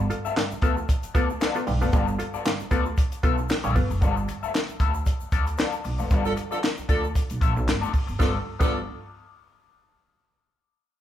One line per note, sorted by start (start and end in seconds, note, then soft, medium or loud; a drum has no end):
0.10 0.26 F4 medium
0.10 0.27 A4 medium
0.10 muted clean electric guitar stroke medium
0.10 closed hi-hat medium
0.10 shaker medium
0.25 0.34 B3 medium
0.25 0.35 F4 medium
0.25 0.35 A4 medium
0.25 0.34 E5 medium
0.25 muted upright bass stroke soft
0.25 shaker medium
0.36 0.53 G2 medium
0.36 0.53 D3 medium
0.36 muted clean electric guitar stroke soft
0.36 snare loud
0.36 clap medium
0.36 closed hi-hat medium
0.36 shaker medium
0.51 muted upright bass stroke soft
0.51 shaker medium
0.62 0.85 D2 medium
0.62 0.74 B3 medium
0.62 0.79 B3 medium
0.62 0.74 F4 medium
0.62 0.76 F4 medium
0.62 0.74 A4 medium
0.62 0.76 A4 medium
0.62 0.75 E5 medium
0.62 kick loud
0.62 closed hi-hat medium
0.62 shaker medium
0.77 0.82 F4 soft
0.77 0.82 A4 soft
0.77 muted clean electric guitar stroke medium
0.77 shaker soft
0.88 muted clean electric guitar stroke soft
0.88 kick medium
0.88 closed hi-hat loud
0.88 shaker medium
1.03 muted upright bass stroke medium
1.03 closed hi-hat medium
1.03 shaker medium
1.14 1.37 D2 medium
1.14 1.26 B3 medium
1.14 1.31 B3 loud
1.14 1.27 F4 medium
1.14 1.31 F4 medium
1.14 1.31 A4 loud
1.14 1.27 A4 medium
1.14 1.27 D5 medium
1.14 kick loud
1.14 closed hi-hat medium
1.14 shaker medium
1.30 muted clean electric guitar stroke soft
1.30 shaker medium
1.41 1.56 B3 medium
1.41 1.56 F4 medium
1.41 1.56 A4 medium
1.41 1.56 D5 medium
1.41 snare loud
1.41 clap loud
1.41 closed hi-hat loud
1.41 shaker medium
1.55 1.69 B3 medium
1.55 1.69 F4 medium
1.55 1.69 A4 medium
1.55 shaker medium
1.67 1.80 B1 medium
1.67 1.83 G2 medium
1.67 1.83 D3 medium
1.67 muted clean electric guitar stroke soft
1.67 open hi-hat medium
1.67 shaker medium
1.81 1.93 F1 loud
1.81 1.95 B3 medium
1.81 1.92 B3 soft
1.81 1.95 F4 medium
1.81 1.91 F4 medium
1.81 1.95 A4 medium
1.81 1.91 A4 medium
1.81 1.91 D5 medium
1.81 shaker medium
1.93 2.15 G1 loud
1.93 2.09 G2 medium
1.93 2.09 D3 medium
1.93 2.08 B3 loud
1.93 2.07 F4 medium
1.93 2.07 A4 loud
1.93 2.06 D5 loud
1.93 kick loud
1.93 closed hi-hat medium
1.93 shaker medium
2.08 muted clean electric guitar stroke soft
2.08 shaker medium
2.19 2.35 F4 medium
2.19 2.35 A4 medium
2.19 muted clean electric guitar stroke soft
2.19 closed hi-hat medium
2.19 shaker medium
2.34 2.44 B3 medium
2.34 2.43 F4 soft
2.34 2.43 A4 medium
2.34 2.43 D5 medium
2.34 muted upright bass stroke soft
2.34 shaker medium
2.45 2.62 G2 medium
2.45 2.61 D3 medium
2.45 muted clean electric guitar stroke soft
2.45 snare loud
2.45 clap loud
2.45 closed hi-hat loud
2.45 shaker medium
2.60 muted upright bass stroke soft
2.60 shaker medium
2.71 2.94 D2 medium
2.71 2.87 B3 medium
2.71 2.83 B3 medium
2.71 2.85 F4 medium
2.71 2.83 F4 medium
2.71 2.84 A4 medium
2.71 2.83 A4 medium
2.71 2.84 D5 medium
2.71 kick loud
2.71 closed hi-hat medium
2.71 shaker medium
2.86 2.91 F4 soft
2.86 2.90 A4 soft
2.86 muted clean electric guitar stroke soft
2.86 shaker medium
2.97 muted clean electric guitar stroke soft
2.97 kick loud
2.97 closed hi-hat loud
2.97 shaker medium
3.12 closed hi-hat medium
3.12 shaker medium
3.23 3.46 B1 medium
3.23 3.39 B3 medium
3.23 3.35 B3 medium
3.23 3.40 F4 medium
3.23 3.36 F4 medium
3.23 3.40 A4 loud
3.23 3.36 A4 medium
3.23 3.36 E5 medium
3.23 kick loud
3.23 closed hi-hat medium
3.23 shaker medium
3.38 muted clean electric guitar stroke medium
3.38 shaker medium
3.49 3.55 F4 soft
3.49 3.56 A4 soft
3.49 muted clean electric guitar stroke soft
3.49 snare loud
3.49 clap loud
3.49 closed hi-hat loud
3.49 shaker medium
3.64 3.74 A#1 medium
3.64 3.77 G2 medium
3.64 3.77 D3 medium
3.64 3.74 B3 medium
3.64 3.75 F4 medium
3.64 3.75 A4 medium
3.64 3.76 D5 medium
3.64 shaker medium
3.75 3.88 G1 medium
3.75 3.92 B3 medium
3.75 3.92 F4 medium
3.75 3.92 A4 medium
3.75 muted clean electric guitar stroke soft
3.75 kick medium
3.75 open hi-hat medium
3.75 shaker medium
3.90 4.02 F1 medium
3.90 muted clean electric guitar stroke soft
3.90 shaker medium
4.01 4.24 G1 loud
4.01 4.16 B3 loud
4.01 4.16 F4 medium
4.01 4.16 A4 loud
4.01 4.15 D5 medium
4.01 kick loud
4.01 closed hi-hat medium
4.01 shaker medium
4.16 muted clean electric guitar stroke soft
4.16 shaker medium
4.28 muted clean electric guitar stroke soft
4.28 closed hi-hat medium
4.28 shaker medium
4.42 4.52 B3 soft
4.42 4.52 F4 medium
4.42 4.52 A4 medium
4.42 4.52 E5 medium
4.42 muted upright bass stroke soft
4.42 shaker medium
4.54 muted clean electric guitar stroke soft
4.54 snare loud
4.54 clap loud
4.54 closed hi-hat medium
4.54 shaker medium
4.69 muted upright bass stroke soft
4.69 shaker medium
4.80 5.02 D2 medium
4.80 4.92 B3 medium
4.80 4.92 F4 medium
4.80 4.92 A4 medium
4.80 4.92 E5 medium
4.80 kick loud
4.80 closed hi-hat medium
4.80 shaker medium
4.94 muted clean electric guitar stroke soft
4.94 shaker medium
5.06 muted clean electric guitar stroke soft
5.06 kick medium
5.06 closed hi-hat medium
5.06 shaker medium
5.20 muted upright bass stroke medium
5.20 shaker medium
5.32 5.55 D2 medium
5.32 5.44 B3 medium
5.32 5.44 F4 medium
5.32 5.44 A4 medium
5.32 5.45 D5 medium
5.32 kick loud
5.32 closed hi-hat medium
5.32 shaker medium
5.47 muted clean electric guitar stroke medium
5.47 closed hi-hat soft
5.47 shaker medium
5.58 5.73 B3 medium
5.58 5.73 F4 medium
5.58 5.74 A4 medium
5.58 5.74 D5 medium
5.58 snare loud
5.58 clap loud
5.58 closed hi-hat loud
5.58 shaker medium
5.73 shaker medium
5.84 5.97 B1 medium
5.84 muted clean electric guitar stroke soft
5.84 open hi-hat medium
5.84 shaker soft
5.99 6.11 F1 medium
5.99 6.09 B3 soft
5.99 6.09 F4 medium
5.99 6.08 A4 medium
5.99 6.08 D5 medium
5.99 shaker medium
6.10 6.33 G1 loud
6.10 6.25 B3 medium
6.10 6.25 F4 medium
6.10 6.24 A4 loud
6.10 6.23 D5 loud
6.10 kick loud
6.10 closed hi-hat medium
6.10 shaker medium
6.25 6.33 F3 medium
6.25 6.33 D4 medium
6.25 6.33 A4 loud
6.25 muted clean electric guitar stroke soft
6.25 shaker medium
6.36 muted clean electric guitar stroke medium
6.36 closed hi-hat medium
6.36 shaker medium
6.51 6.59 F3 medium
6.51 6.61 B3 medium
6.51 6.59 D4 medium
6.51 6.61 F4 medium
6.51 6.59 A4 medium
6.51 6.61 A4 medium
6.51 6.60 D5 medium
6.51 muted upright bass stroke soft
6.51 shaker medium
6.63 muted clean electric guitar stroke soft
6.63 snare loud
6.63 clap medium
6.63 closed hi-hat loud
6.63 shaker medium
6.78 muted upright bass stroke soft
6.78 shaker medium
6.89 7.11 D2 medium
6.89 7.06 F3 medium
6.89 7.01 B3 medium
6.89 7.06 D4 medium
6.89 7.01 F4 medium
6.89 7.06 A4 medium
6.89 7.01 A4 medium
6.89 7.01 D5 medium
6.89 kick loud
6.89 closed hi-hat medium
6.89 shaker medium
7.04 muted clean electric guitar stroke soft
7.04 shaker soft
7.15 muted clean electric guitar stroke soft
7.15 kick medium
7.15 closed hi-hat medium
7.15 shaker medium
7.30 7.42 B1 medium
7.30 closed hi-hat medium
7.30 shaker medium
7.41 7.56 A#1 loud
7.41 7.53 B3 medium
7.41 7.53 F4 medium
7.41 7.53 A4 medium
7.41 7.53 E5 medium
7.41 kick loud
7.41 closed hi-hat medium
7.41 shaker medium
7.55 7.66 B1 medium
7.55 muted clean electric guitar stroke soft
7.55 shaker soft
7.67 7.82 G1 medium
7.67 muted clean electric guitar stroke soft
7.67 snare loud
7.67 clap loud
7.67 closed hi-hat loud
7.67 shaker medium
7.81 7.92 F1 medium
7.81 7.91 B3 medium
7.81 7.92 F4 medium
7.81 7.92 A4 medium
7.81 7.92 D5 medium
7.81 shaker medium
7.93 muted clean electric guitar stroke medium
7.93 kick medium
7.93 open hi-hat medium
7.93 shaker soft
8.07 8.18 G1 medium
8.07 muted clean electric guitar stroke soft
8.07 shaker medium
8.19 8.36 G1 loud
8.19 8.31 F3 medium
8.19 8.36 B3 medium
8.19 8.35 B3 medium
8.19 8.31 D4 medium
8.19 8.37 F4 medium
8.19 8.35 F4 medium
8.19 8.31 A4 loud
8.19 8.37 A4 medium
8.19 8.36 A4 medium
8.19 8.37 D5 medium
8.19 kick loud
8.19 snare medium
8.19 shaker medium
8.59 8.85 G1 medium
8.59 8.79 F3 medium
8.59 8.74 B3 medium
8.59 8.79 B3 medium
8.59 8.79 D4 medium
8.59 8.74 F4 medium
8.59 8.79 F4 medium
8.59 8.75 A4 medium
8.59 8.79 A4 medium
8.59 8.75 D5 medium
8.59 kick loud
8.59 crash medium
8.59 shaker medium